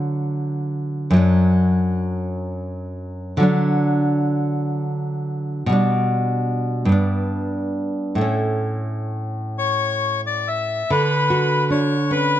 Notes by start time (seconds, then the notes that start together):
Already playing: D3 F#3 A3
1.10 F#2 F#3
1.17 D4
3.37 D3 F#3
3.43 D4
5.66 B2 G3
5.72 D4
6.85 G2 B3
6.92 D4
8.15 A2 A3
8.21 C#4
9.58 C#5
10.27 D5
10.48 E5
10.90 D3 B4
11.30 F#4
11.70 D4 C#5
12.11 C#4 B4